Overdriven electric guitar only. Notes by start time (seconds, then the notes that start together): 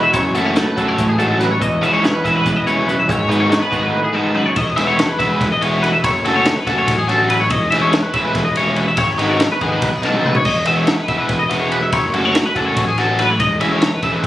0.35 F#3 A3 C#4 F#4
0.76 F#3 A3 C#4 F#4
1.19 F#3 A3 C#4 F#4
1.82 E3 G#3 C#4 E4
2.24 E3 G#3 C#4 E4
2.67 E3 G#3 C#4 E4
3.29 D#3 G#3 B3 D#4
3.71 D#3 G#3 B3 D#4
4.13 D#3 G#3 B3 D#4
4.77 E3 G#3 B3 E4
5.19 E3 G#3 B3 E4
5.61 E3 G#3 B3 E4
6.25 F#3 A3 C#4 F#4
6.67 F#3 A3 C#4 F#4
7.08 F#3 A3 C#4 F#4
7.72 E3 G#3 C#4 E4
8.14 E3 G#3 C#4 E4
8.57 E3 G#3 C#4 E4
9.18 D#3 G#3 B3 D#4
9.61 D#3 G#3 B3 D#4
10.03 D#3 G#3 B3 D#4
10.66 E3 G#3 B3 E4
11.08 E3 G#3 B3 E4
11.50 E3 G#3 B3 E4
12.14 F#3 A3 C#4 F#4
12.55 F#3 A3 C#4 F#4
12.99 F#3 A3 C#4 F#4
13.61 E3 G#3 C#4 E4
14.03 E3 G#3 C#4 E4